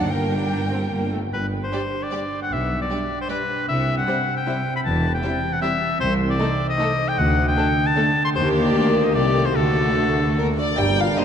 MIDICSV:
0, 0, Header, 1, 13, 480
1, 0, Start_track
1, 0, Tempo, 406229
1, 126, Time_signature, 3, 2, 24, 8
1, 2045, Tempo, 390371
1, 10685, Tempo, 402685
1, 13653, End_track
2, 0, Start_track
2, 0, Title_t, "Flute"
2, 0, Program_c, 0, 73
2, 0, Note_on_c, 0, 78, 64
2, 107, Note_on_c, 0, 79, 61
2, 125, Note_off_c, 0, 78, 0
2, 1323, Note_off_c, 0, 79, 0
2, 13100, Note_on_c, 0, 82, 61
2, 13653, Note_off_c, 0, 82, 0
2, 13653, End_track
3, 0, Start_track
3, 0, Title_t, "Oboe"
3, 0, Program_c, 1, 68
3, 1572, Note_on_c, 1, 71, 59
3, 1732, Note_off_c, 1, 71, 0
3, 1928, Note_on_c, 1, 72, 53
3, 2413, Note_on_c, 1, 74, 54
3, 2432, Note_off_c, 1, 72, 0
3, 2888, Note_off_c, 1, 74, 0
3, 2895, Note_on_c, 1, 78, 64
3, 3024, Note_on_c, 1, 76, 53
3, 3043, Note_off_c, 1, 78, 0
3, 3371, Note_off_c, 1, 76, 0
3, 3378, Note_on_c, 1, 74, 50
3, 3844, Note_off_c, 1, 74, 0
3, 3866, Note_on_c, 1, 72, 62
3, 3962, Note_off_c, 1, 72, 0
3, 3969, Note_on_c, 1, 71, 70
3, 4438, Note_off_c, 1, 71, 0
3, 4448, Note_on_c, 1, 76, 72
3, 4796, Note_off_c, 1, 76, 0
3, 4803, Note_on_c, 1, 78, 64
3, 5275, Note_off_c, 1, 78, 0
3, 5286, Note_on_c, 1, 79, 63
3, 5754, Note_off_c, 1, 79, 0
3, 5769, Note_on_c, 1, 83, 75
3, 5822, Note_off_c, 1, 83, 0
3, 5886, Note_on_c, 1, 81, 67
3, 6234, Note_off_c, 1, 81, 0
3, 6241, Note_on_c, 1, 79, 64
3, 6711, Note_on_c, 1, 78, 71
3, 6729, Note_off_c, 1, 79, 0
3, 6818, Note_off_c, 1, 78, 0
3, 6826, Note_on_c, 1, 76, 79
3, 7291, Note_off_c, 1, 76, 0
3, 7299, Note_on_c, 1, 72, 84
3, 7463, Note_off_c, 1, 72, 0
3, 7660, Note_on_c, 1, 74, 69
3, 8135, Note_off_c, 1, 74, 0
3, 8148, Note_on_c, 1, 75, 85
3, 8627, Note_on_c, 1, 79, 90
3, 8646, Note_off_c, 1, 75, 0
3, 8745, Note_on_c, 1, 78, 81
3, 8763, Note_off_c, 1, 79, 0
3, 9104, Note_off_c, 1, 78, 0
3, 9111, Note_on_c, 1, 79, 83
3, 9586, Note_on_c, 1, 81, 95
3, 9605, Note_off_c, 1, 79, 0
3, 10051, Note_off_c, 1, 81, 0
3, 10059, Note_on_c, 1, 84, 91
3, 10118, Note_off_c, 1, 84, 0
3, 10190, Note_on_c, 1, 72, 89
3, 10355, Note_off_c, 1, 72, 0
3, 10537, Note_on_c, 1, 74, 63
3, 11022, Note_on_c, 1, 75, 66
3, 11040, Note_off_c, 1, 74, 0
3, 11141, Note_off_c, 1, 75, 0
3, 11148, Note_on_c, 1, 74, 73
3, 11516, Note_on_c, 1, 72, 66
3, 11534, Note_off_c, 1, 74, 0
3, 11638, Note_on_c, 1, 69, 70
3, 11656, Note_off_c, 1, 72, 0
3, 12852, Note_off_c, 1, 69, 0
3, 13572, Note_on_c, 1, 72, 65
3, 13653, Note_off_c, 1, 72, 0
3, 13653, End_track
4, 0, Start_track
4, 0, Title_t, "Violin section"
4, 0, Program_c, 2, 48
4, 0, Note_on_c, 2, 69, 51
4, 122, Note_off_c, 2, 69, 0
4, 126, Note_on_c, 2, 70, 44
4, 1308, Note_off_c, 2, 70, 0
4, 2045, Note_on_c, 2, 74, 37
4, 2143, Note_off_c, 2, 74, 0
4, 2515, Note_on_c, 2, 74, 43
4, 2613, Note_off_c, 2, 74, 0
4, 3494, Note_on_c, 2, 74, 36
4, 3593, Note_off_c, 2, 74, 0
4, 3965, Note_on_c, 2, 74, 42
4, 4063, Note_off_c, 2, 74, 0
4, 4930, Note_on_c, 2, 72, 40
4, 5028, Note_off_c, 2, 72, 0
4, 5415, Note_on_c, 2, 72, 48
4, 5514, Note_off_c, 2, 72, 0
4, 6351, Note_on_c, 2, 72, 48
4, 6449, Note_off_c, 2, 72, 0
4, 6834, Note_on_c, 2, 72, 49
4, 6932, Note_off_c, 2, 72, 0
4, 7788, Note_on_c, 2, 69, 55
4, 7886, Note_off_c, 2, 69, 0
4, 8275, Note_on_c, 2, 69, 61
4, 8373, Note_off_c, 2, 69, 0
4, 9244, Note_on_c, 2, 69, 57
4, 9342, Note_off_c, 2, 69, 0
4, 9724, Note_on_c, 2, 69, 60
4, 9823, Note_off_c, 2, 69, 0
4, 10208, Note_on_c, 2, 67, 67
4, 11113, Note_off_c, 2, 67, 0
4, 11155, Note_on_c, 2, 67, 57
4, 11631, Note_off_c, 2, 67, 0
4, 11635, Note_on_c, 2, 66, 54
4, 12826, Note_off_c, 2, 66, 0
4, 13567, Note_on_c, 2, 62, 52
4, 13653, Note_off_c, 2, 62, 0
4, 13653, End_track
5, 0, Start_track
5, 0, Title_t, "Harp"
5, 0, Program_c, 3, 46
5, 0, Note_on_c, 3, 43, 36
5, 0, Note_on_c, 3, 58, 32
5, 0, Note_on_c, 3, 69, 35
5, 24, Note_on_c, 3, 62, 33
5, 78, Note_on_c, 3, 67, 36
5, 122, Note_off_c, 3, 69, 0
5, 1487, Note_off_c, 3, 43, 0
5, 1513, Note_off_c, 3, 58, 0
5, 1573, Note_on_c, 3, 43, 51
5, 1816, Note_on_c, 3, 55, 36
5, 2039, Note_off_c, 3, 62, 0
5, 2054, Note_on_c, 3, 62, 34
5, 2286, Note_off_c, 3, 67, 0
5, 2301, Note_on_c, 3, 67, 33
5, 2524, Note_off_c, 3, 62, 0
5, 2539, Note_on_c, 3, 62, 37
5, 2758, Note_off_c, 3, 67, 0
5, 2773, Note_on_c, 3, 67, 38
5, 3016, Note_on_c, 3, 47, 49
5, 3029, Note_off_c, 3, 43, 0
5, 3244, Note_off_c, 3, 55, 0
5, 3259, Note_on_c, 3, 55, 40
5, 3484, Note_off_c, 3, 62, 0
5, 3499, Note_on_c, 3, 62, 33
5, 3718, Note_off_c, 3, 67, 0
5, 3733, Note_on_c, 3, 67, 39
5, 3968, Note_off_c, 3, 62, 0
5, 4209, Note_off_c, 3, 67, 0
5, 4223, Note_on_c, 3, 67, 46
5, 4465, Note_on_c, 3, 48, 48
5, 4469, Note_off_c, 3, 47, 0
5, 4702, Note_on_c, 3, 60, 45
5, 4943, Note_on_c, 3, 72, 39
5, 5170, Note_off_c, 3, 67, 0
5, 5185, Note_on_c, 3, 67, 37
5, 5410, Note_off_c, 3, 72, 0
5, 5425, Note_on_c, 3, 72, 41
5, 5649, Note_off_c, 3, 67, 0
5, 5664, Note_on_c, 3, 67, 50
5, 5888, Note_on_c, 3, 52, 55
5, 5911, Note_off_c, 3, 48, 0
5, 6113, Note_off_c, 3, 60, 0
5, 6128, Note_on_c, 3, 60, 44
5, 6345, Note_off_c, 3, 72, 0
5, 6360, Note_on_c, 3, 72, 41
5, 6574, Note_off_c, 3, 67, 0
5, 6589, Note_on_c, 3, 67, 51
5, 6820, Note_off_c, 3, 72, 0
5, 6834, Note_on_c, 3, 72, 54
5, 7050, Note_off_c, 3, 67, 0
5, 7065, Note_on_c, 3, 67, 49
5, 7302, Note_on_c, 3, 48, 61
5, 7326, Note_off_c, 3, 67, 0
5, 7332, Note_off_c, 3, 52, 0
5, 7334, Note_off_c, 3, 55, 0
5, 7540, Note_on_c, 3, 57, 55
5, 7780, Note_on_c, 3, 63, 48
5, 8001, Note_off_c, 3, 72, 0
5, 8015, Note_on_c, 3, 72, 52
5, 8257, Note_on_c, 3, 69, 52
5, 8485, Note_off_c, 3, 72, 0
5, 8500, Note_on_c, 3, 72, 58
5, 8744, Note_on_c, 3, 50, 69
5, 8766, Note_off_c, 3, 72, 0
5, 8767, Note_off_c, 3, 63, 0
5, 8768, Note_off_c, 3, 48, 0
5, 8775, Note_off_c, 3, 60, 0
5, 8992, Note_on_c, 3, 62, 54
5, 9221, Note_off_c, 3, 69, 0
5, 9235, Note_on_c, 3, 69, 46
5, 9459, Note_off_c, 3, 62, 0
5, 9474, Note_on_c, 3, 62, 54
5, 9713, Note_on_c, 3, 74, 58
5, 9949, Note_off_c, 3, 69, 0
5, 9964, Note_on_c, 3, 69, 57
5, 10202, Note_on_c, 3, 51, 66
5, 10216, Note_off_c, 3, 50, 0
5, 10216, Note_off_c, 3, 57, 0
5, 10217, Note_off_c, 3, 74, 0
5, 10218, Note_off_c, 3, 62, 0
5, 10222, Note_off_c, 3, 69, 0
5, 10446, Note_on_c, 3, 58, 52
5, 10680, Note_on_c, 3, 70, 43
5, 10922, Note_on_c, 3, 67, 48
5, 11155, Note_on_c, 3, 48, 55
5, 11175, Note_off_c, 3, 70, 0
5, 11177, Note_off_c, 3, 51, 0
5, 11179, Note_off_c, 3, 58, 0
5, 11391, Note_on_c, 3, 63, 44
5, 11399, Note_on_c, 3, 69, 50
5, 11640, Note_on_c, 3, 50, 60
5, 11659, Note_off_c, 3, 63, 0
5, 11660, Note_off_c, 3, 48, 0
5, 11662, Note_off_c, 3, 67, 0
5, 11885, Note_on_c, 3, 62, 44
5, 12115, Note_off_c, 3, 69, 0
5, 12129, Note_on_c, 3, 69, 37
5, 12374, Note_on_c, 3, 66, 36
5, 12609, Note_on_c, 3, 74, 43
5, 12837, Note_off_c, 3, 66, 0
5, 12851, Note_on_c, 3, 66, 44
5, 13095, Note_on_c, 3, 43, 58
5, 13111, Note_off_c, 3, 66, 0
5, 13112, Note_off_c, 3, 50, 0
5, 13113, Note_off_c, 3, 69, 0
5, 13214, Note_on_c, 3, 58, 42
5, 13319, Note_off_c, 3, 62, 0
5, 13334, Note_on_c, 3, 62, 49
5, 13453, Note_on_c, 3, 67, 47
5, 13570, Note_on_c, 3, 70, 46
5, 13653, Note_off_c, 3, 43, 0
5, 13653, Note_off_c, 3, 58, 0
5, 13653, Note_off_c, 3, 62, 0
5, 13653, Note_off_c, 3, 67, 0
5, 13653, Note_off_c, 3, 70, 0
5, 13653, Note_off_c, 3, 74, 0
5, 13653, End_track
6, 0, Start_track
6, 0, Title_t, "Violin section"
6, 0, Program_c, 4, 48
6, 124, Note_on_c, 4, 79, 46
6, 1331, Note_off_c, 4, 79, 0
6, 2028, Note_on_c, 4, 67, 44
6, 2126, Note_off_c, 4, 67, 0
6, 2526, Note_on_c, 4, 67, 41
6, 2625, Note_off_c, 4, 67, 0
6, 3496, Note_on_c, 4, 67, 41
6, 3594, Note_off_c, 4, 67, 0
6, 3971, Note_on_c, 4, 67, 42
6, 4069, Note_off_c, 4, 67, 0
6, 4926, Note_on_c, 4, 64, 47
6, 5025, Note_off_c, 4, 64, 0
6, 5411, Note_on_c, 4, 64, 45
6, 5509, Note_off_c, 4, 64, 0
6, 6369, Note_on_c, 4, 64, 50
6, 6467, Note_off_c, 4, 64, 0
6, 6847, Note_on_c, 4, 64, 49
6, 6945, Note_off_c, 4, 64, 0
6, 7783, Note_on_c, 4, 63, 57
6, 7881, Note_off_c, 4, 63, 0
6, 8263, Note_on_c, 4, 63, 58
6, 8362, Note_off_c, 4, 63, 0
6, 9238, Note_on_c, 4, 62, 60
6, 9336, Note_off_c, 4, 62, 0
6, 9708, Note_on_c, 4, 62, 56
6, 9806, Note_off_c, 4, 62, 0
6, 10203, Note_on_c, 4, 58, 62
6, 11111, Note_off_c, 4, 58, 0
6, 11149, Note_on_c, 4, 57, 58
6, 11634, Note_off_c, 4, 57, 0
6, 11648, Note_on_c, 4, 57, 53
6, 12597, Note_off_c, 4, 57, 0
6, 12615, Note_on_c, 4, 70, 68
6, 12710, Note_off_c, 4, 70, 0
6, 12863, Note_on_c, 4, 74, 76
6, 13090, Note_on_c, 4, 79, 82
6, 13094, Note_off_c, 4, 74, 0
6, 13329, Note_off_c, 4, 79, 0
6, 13341, Note_on_c, 4, 77, 74
6, 13571, Note_off_c, 4, 77, 0
6, 13575, Note_on_c, 4, 75, 81
6, 13653, Note_off_c, 4, 75, 0
6, 13653, End_track
7, 0, Start_track
7, 0, Title_t, "Clarinet"
7, 0, Program_c, 5, 71
7, 13088, Note_on_c, 5, 62, 61
7, 13653, Note_off_c, 5, 62, 0
7, 13653, End_track
8, 0, Start_track
8, 0, Title_t, "French horn section"
8, 0, Program_c, 6, 60
8, 2043, Note_on_c, 6, 55, 34
8, 2051, Note_on_c, 6, 62, 36
8, 2218, Note_off_c, 6, 55, 0
8, 2224, Note_off_c, 6, 62, 0
8, 2518, Note_on_c, 6, 55, 34
8, 2525, Note_on_c, 6, 62, 37
8, 2693, Note_off_c, 6, 55, 0
8, 2699, Note_off_c, 6, 62, 0
8, 3509, Note_on_c, 6, 62, 37
8, 3513, Note_on_c, 6, 55, 38
8, 3677, Note_off_c, 6, 62, 0
8, 3680, Note_off_c, 6, 55, 0
8, 3966, Note_on_c, 6, 62, 38
8, 3971, Note_on_c, 6, 55, 40
8, 4139, Note_off_c, 6, 62, 0
8, 4143, Note_off_c, 6, 55, 0
8, 4936, Note_on_c, 6, 60, 43
8, 4940, Note_on_c, 6, 55, 41
8, 5107, Note_off_c, 6, 60, 0
8, 5110, Note_off_c, 6, 55, 0
8, 5413, Note_on_c, 6, 55, 45
8, 5419, Note_on_c, 6, 60, 45
8, 5583, Note_off_c, 6, 55, 0
8, 5588, Note_off_c, 6, 60, 0
8, 6370, Note_on_c, 6, 55, 46
8, 6378, Note_on_c, 6, 60, 42
8, 6539, Note_off_c, 6, 55, 0
8, 6545, Note_off_c, 6, 60, 0
8, 6843, Note_on_c, 6, 60, 49
8, 6846, Note_on_c, 6, 55, 44
8, 7012, Note_off_c, 6, 60, 0
8, 7015, Note_off_c, 6, 55, 0
8, 7782, Note_on_c, 6, 63, 53
8, 7784, Note_on_c, 6, 57, 49
8, 7956, Note_off_c, 6, 63, 0
8, 7958, Note_off_c, 6, 57, 0
8, 8271, Note_on_c, 6, 63, 55
8, 8272, Note_on_c, 6, 57, 61
8, 8445, Note_off_c, 6, 63, 0
8, 8446, Note_off_c, 6, 57, 0
8, 9237, Note_on_c, 6, 57, 54
8, 9241, Note_on_c, 6, 62, 47
8, 9411, Note_off_c, 6, 57, 0
8, 9414, Note_off_c, 6, 62, 0
8, 9724, Note_on_c, 6, 62, 57
8, 9729, Note_on_c, 6, 57, 62
8, 9896, Note_off_c, 6, 62, 0
8, 9900, Note_off_c, 6, 57, 0
8, 10204, Note_on_c, 6, 67, 71
8, 10212, Note_on_c, 6, 58, 69
8, 11111, Note_off_c, 6, 67, 0
8, 11115, Note_off_c, 6, 58, 0
8, 11157, Note_on_c, 6, 67, 59
8, 11165, Note_on_c, 6, 57, 58
8, 11632, Note_off_c, 6, 67, 0
8, 11645, Note_off_c, 6, 57, 0
8, 11661, Note_on_c, 6, 57, 48
8, 11661, Note_on_c, 6, 66, 55
8, 12603, Note_off_c, 6, 57, 0
8, 12603, Note_off_c, 6, 66, 0
8, 12632, Note_on_c, 6, 58, 54
8, 12736, Note_off_c, 6, 58, 0
8, 12849, Note_on_c, 6, 62, 58
8, 13087, Note_off_c, 6, 62, 0
8, 13094, Note_on_c, 6, 67, 68
8, 13200, Note_off_c, 6, 67, 0
8, 13337, Note_on_c, 6, 65, 66
8, 13442, Note_off_c, 6, 65, 0
8, 13566, Note_on_c, 6, 63, 55
8, 13653, Note_off_c, 6, 63, 0
8, 13653, End_track
9, 0, Start_track
9, 0, Title_t, "Viola section"
9, 0, Program_c, 7, 48
9, 0, Note_on_c, 7, 63, 35
9, 0, Note_on_c, 7, 74, 36
9, 122, Note_on_c, 7, 58, 40
9, 125, Note_on_c, 7, 70, 41
9, 126, Note_off_c, 7, 63, 0
9, 129, Note_off_c, 7, 74, 0
9, 351, Note_off_c, 7, 58, 0
9, 352, Note_off_c, 7, 70, 0
9, 368, Note_on_c, 7, 67, 36
9, 374, Note_on_c, 7, 62, 36
9, 591, Note_off_c, 7, 62, 0
9, 605, Note_on_c, 7, 62, 54
9, 611, Note_off_c, 7, 67, 0
9, 700, Note_off_c, 7, 62, 0
9, 845, Note_on_c, 7, 60, 48
9, 939, Note_off_c, 7, 60, 0
9, 1081, Note_on_c, 7, 58, 41
9, 1316, Note_on_c, 7, 57, 37
9, 1322, Note_off_c, 7, 58, 0
9, 1411, Note_off_c, 7, 57, 0
9, 2036, Note_on_c, 7, 55, 38
9, 2134, Note_off_c, 7, 55, 0
9, 2522, Note_on_c, 7, 55, 40
9, 2620, Note_off_c, 7, 55, 0
9, 3490, Note_on_c, 7, 55, 39
9, 3588, Note_off_c, 7, 55, 0
9, 3965, Note_on_c, 7, 55, 41
9, 4064, Note_off_c, 7, 55, 0
9, 4919, Note_on_c, 7, 55, 47
9, 5017, Note_off_c, 7, 55, 0
9, 5401, Note_on_c, 7, 55, 46
9, 5499, Note_off_c, 7, 55, 0
9, 6354, Note_on_c, 7, 55, 50
9, 6452, Note_off_c, 7, 55, 0
9, 6822, Note_on_c, 7, 55, 55
9, 6920, Note_off_c, 7, 55, 0
9, 7774, Note_on_c, 7, 57, 55
9, 7872, Note_off_c, 7, 57, 0
9, 8246, Note_on_c, 7, 57, 54
9, 8344, Note_off_c, 7, 57, 0
9, 9218, Note_on_c, 7, 57, 61
9, 9317, Note_off_c, 7, 57, 0
9, 9712, Note_on_c, 7, 57, 61
9, 9810, Note_off_c, 7, 57, 0
9, 10186, Note_on_c, 7, 51, 62
9, 11103, Note_off_c, 7, 51, 0
9, 11145, Note_on_c, 7, 51, 51
9, 11626, Note_off_c, 7, 51, 0
9, 11633, Note_on_c, 7, 50, 53
9, 12850, Note_off_c, 7, 50, 0
9, 13560, Note_on_c, 7, 50, 50
9, 13560, Note_on_c, 7, 58, 50
9, 13653, Note_off_c, 7, 50, 0
9, 13653, Note_off_c, 7, 58, 0
9, 13653, End_track
10, 0, Start_track
10, 0, Title_t, "Bassoon"
10, 0, Program_c, 8, 70
10, 13094, Note_on_c, 8, 55, 59
10, 13653, Note_off_c, 8, 55, 0
10, 13653, End_track
11, 0, Start_track
11, 0, Title_t, "Cello section"
11, 0, Program_c, 10, 48
11, 0, Note_on_c, 10, 54, 52
11, 122, Note_off_c, 10, 54, 0
11, 133, Note_on_c, 10, 55, 56
11, 1312, Note_off_c, 10, 55, 0
11, 1581, Note_on_c, 10, 43, 49
11, 1971, Note_off_c, 10, 43, 0
11, 3021, Note_on_c, 10, 47, 56
11, 3417, Note_off_c, 10, 47, 0
11, 4453, Note_on_c, 10, 48, 60
11, 4850, Note_off_c, 10, 48, 0
11, 5888, Note_on_c, 10, 40, 63
11, 6281, Note_off_c, 10, 40, 0
11, 7310, Note_on_c, 10, 36, 72
11, 7709, Note_off_c, 10, 36, 0
11, 8753, Note_on_c, 10, 38, 82
11, 9156, Note_off_c, 10, 38, 0
11, 10211, Note_on_c, 10, 39, 74
11, 10654, Note_off_c, 10, 39, 0
11, 10683, Note_on_c, 10, 38, 65
11, 11148, Note_off_c, 10, 38, 0
11, 11158, Note_on_c, 10, 36, 58
11, 11642, Note_off_c, 10, 36, 0
11, 11646, Note_on_c, 10, 38, 59
11, 12832, Note_off_c, 10, 38, 0
11, 13101, Note_on_c, 10, 43, 59
11, 13491, Note_off_c, 10, 43, 0
11, 13653, End_track
12, 0, Start_track
12, 0, Title_t, "Double bass section"
12, 0, Program_c, 11, 48
12, 115, Note_on_c, 11, 43, 53
12, 549, Note_off_c, 11, 43, 0
12, 606, Note_on_c, 11, 43, 43
12, 1033, Note_off_c, 11, 43, 0
12, 1093, Note_on_c, 11, 43, 42
12, 1516, Note_off_c, 11, 43, 0
12, 1572, Note_on_c, 11, 31, 50
12, 1966, Note_off_c, 11, 31, 0
12, 3017, Note_on_c, 11, 35, 60
12, 3415, Note_off_c, 11, 35, 0
12, 4454, Note_on_c, 11, 36, 55
12, 4850, Note_off_c, 11, 36, 0
12, 5879, Note_on_c, 11, 28, 60
12, 6277, Note_off_c, 11, 28, 0
12, 7303, Note_on_c, 11, 36, 77
12, 7705, Note_off_c, 11, 36, 0
12, 8738, Note_on_c, 11, 38, 78
12, 9148, Note_off_c, 11, 38, 0
12, 10191, Note_on_c, 11, 39, 80
12, 10644, Note_off_c, 11, 39, 0
12, 10676, Note_on_c, 11, 38, 56
12, 11145, Note_off_c, 11, 38, 0
12, 11149, Note_on_c, 11, 36, 62
12, 11626, Note_on_c, 11, 38, 58
12, 11637, Note_off_c, 11, 36, 0
12, 12822, Note_off_c, 11, 38, 0
12, 13091, Note_on_c, 11, 31, 62
12, 13486, Note_off_c, 11, 31, 0
12, 13653, End_track
13, 0, Start_track
13, 0, Title_t, "Tuba"
13, 0, Program_c, 12, 58
13, 130, Note_on_c, 12, 31, 49
13, 557, Note_off_c, 12, 31, 0
13, 611, Note_on_c, 12, 31, 44
13, 1036, Note_off_c, 12, 31, 0
13, 1090, Note_on_c, 12, 31, 47
13, 1514, Note_off_c, 12, 31, 0
13, 1566, Note_on_c, 12, 31, 51
13, 1963, Note_off_c, 12, 31, 0
13, 3012, Note_on_c, 12, 35, 50
13, 3412, Note_off_c, 12, 35, 0
13, 4456, Note_on_c, 12, 36, 55
13, 4851, Note_off_c, 12, 36, 0
13, 5883, Note_on_c, 12, 28, 59
13, 6279, Note_off_c, 12, 28, 0
13, 7307, Note_on_c, 12, 36, 70
13, 7707, Note_off_c, 12, 36, 0
13, 8758, Note_on_c, 12, 38, 68
13, 9158, Note_off_c, 12, 38, 0
13, 10206, Note_on_c, 12, 39, 69
13, 10652, Note_off_c, 12, 39, 0
13, 10690, Note_on_c, 12, 38, 60
13, 11165, Note_on_c, 12, 36, 56
13, 11183, Note_off_c, 12, 38, 0
13, 11637, Note_off_c, 12, 36, 0
13, 11644, Note_on_c, 12, 38, 54
13, 12831, Note_off_c, 12, 38, 0
13, 13104, Note_on_c, 12, 31, 66
13, 13492, Note_off_c, 12, 31, 0
13, 13653, End_track
0, 0, End_of_file